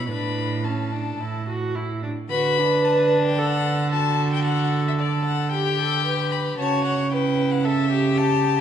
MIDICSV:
0, 0, Header, 1, 5, 480
1, 0, Start_track
1, 0, Key_signature, 2, "major"
1, 0, Tempo, 550459
1, 72, Time_signature, 4, 2, 24, 8
1, 2950, Tempo, 532860
1, 7654, End_track
2, 0, Start_track
2, 0, Title_t, "Violin"
2, 0, Program_c, 0, 40
2, 72, Note_on_c, 0, 83, 85
2, 562, Note_on_c, 0, 81, 64
2, 575, Note_off_c, 0, 83, 0
2, 1527, Note_off_c, 0, 81, 0
2, 2005, Note_on_c, 0, 83, 109
2, 2483, Note_on_c, 0, 81, 84
2, 2496, Note_off_c, 0, 83, 0
2, 2828, Note_off_c, 0, 81, 0
2, 2834, Note_on_c, 0, 79, 91
2, 2958, Note_on_c, 0, 78, 114
2, 2971, Note_off_c, 0, 79, 0
2, 3427, Note_off_c, 0, 78, 0
2, 3433, Note_on_c, 0, 81, 108
2, 3788, Note_off_c, 0, 81, 0
2, 3802, Note_on_c, 0, 79, 102
2, 3906, Note_off_c, 0, 79, 0
2, 3912, Note_on_c, 0, 78, 99
2, 4269, Note_off_c, 0, 78, 0
2, 4296, Note_on_c, 0, 76, 91
2, 4340, Note_off_c, 0, 76, 0
2, 4403, Note_on_c, 0, 74, 86
2, 4627, Note_off_c, 0, 74, 0
2, 4632, Note_on_c, 0, 78, 98
2, 4867, Note_off_c, 0, 78, 0
2, 4872, Note_on_c, 0, 79, 115
2, 5594, Note_on_c, 0, 83, 91
2, 5608, Note_off_c, 0, 79, 0
2, 5827, Note_off_c, 0, 83, 0
2, 5833, Note_on_c, 0, 81, 101
2, 6067, Note_off_c, 0, 81, 0
2, 6073, Note_on_c, 0, 78, 91
2, 6310, Note_off_c, 0, 78, 0
2, 6319, Note_on_c, 0, 79, 92
2, 6672, Note_on_c, 0, 78, 89
2, 6685, Note_off_c, 0, 79, 0
2, 6792, Note_on_c, 0, 76, 101
2, 6805, Note_off_c, 0, 78, 0
2, 7269, Note_on_c, 0, 81, 106
2, 7283, Note_off_c, 0, 76, 0
2, 7654, Note_off_c, 0, 81, 0
2, 7654, End_track
3, 0, Start_track
3, 0, Title_t, "Viola"
3, 0, Program_c, 1, 41
3, 80, Note_on_c, 1, 62, 64
3, 553, Note_off_c, 1, 62, 0
3, 561, Note_on_c, 1, 61, 61
3, 800, Note_on_c, 1, 62, 54
3, 813, Note_off_c, 1, 61, 0
3, 1049, Note_on_c, 1, 64, 62
3, 1062, Note_off_c, 1, 62, 0
3, 1283, Note_off_c, 1, 64, 0
3, 1288, Note_on_c, 1, 66, 73
3, 1527, Note_on_c, 1, 64, 66
3, 1540, Note_off_c, 1, 66, 0
3, 1768, Note_off_c, 1, 64, 0
3, 1772, Note_on_c, 1, 62, 53
3, 1841, Note_off_c, 1, 62, 0
3, 2004, Note_on_c, 1, 71, 112
3, 2957, Note_on_c, 1, 69, 78
3, 2970, Note_off_c, 1, 71, 0
3, 4869, Note_off_c, 1, 69, 0
3, 4874, Note_on_c, 1, 67, 69
3, 5112, Note_off_c, 1, 67, 0
3, 5119, Note_on_c, 1, 69, 72
3, 5352, Note_off_c, 1, 69, 0
3, 5357, Note_on_c, 1, 71, 83
3, 5828, Note_off_c, 1, 71, 0
3, 5845, Note_on_c, 1, 73, 93
3, 6323, Note_on_c, 1, 71, 80
3, 6336, Note_off_c, 1, 73, 0
3, 6796, Note_on_c, 1, 69, 74
3, 6810, Note_off_c, 1, 71, 0
3, 7035, Note_off_c, 1, 69, 0
3, 7039, Note_on_c, 1, 67, 79
3, 7654, Note_off_c, 1, 67, 0
3, 7654, End_track
4, 0, Start_track
4, 0, Title_t, "Violin"
4, 0, Program_c, 2, 40
4, 73, Note_on_c, 2, 71, 73
4, 557, Note_on_c, 2, 69, 59
4, 570, Note_off_c, 2, 71, 0
4, 1524, Note_off_c, 2, 69, 0
4, 2005, Note_on_c, 2, 66, 81
4, 2254, Note_on_c, 2, 62, 91
4, 2267, Note_off_c, 2, 66, 0
4, 3440, Note_on_c, 2, 66, 78
4, 3453, Note_off_c, 2, 62, 0
4, 4398, Note_on_c, 2, 69, 67
4, 4412, Note_off_c, 2, 66, 0
4, 4889, Note_on_c, 2, 67, 80
4, 4903, Note_off_c, 2, 69, 0
4, 5845, Note_off_c, 2, 67, 0
4, 5850, Note_on_c, 2, 66, 72
4, 6314, Note_off_c, 2, 66, 0
4, 6322, Note_on_c, 2, 64, 68
4, 6785, Note_on_c, 2, 69, 73
4, 6799, Note_off_c, 2, 64, 0
4, 7027, Note_off_c, 2, 69, 0
4, 7032, Note_on_c, 2, 67, 77
4, 7654, Note_off_c, 2, 67, 0
4, 7654, End_track
5, 0, Start_track
5, 0, Title_t, "Cello"
5, 0, Program_c, 3, 42
5, 69, Note_on_c, 3, 45, 63
5, 1032, Note_off_c, 3, 45, 0
5, 1037, Note_on_c, 3, 45, 60
5, 1809, Note_off_c, 3, 45, 0
5, 2008, Note_on_c, 3, 50, 77
5, 5804, Note_off_c, 3, 50, 0
5, 5839, Note_on_c, 3, 49, 81
5, 7654, Note_off_c, 3, 49, 0
5, 7654, End_track
0, 0, End_of_file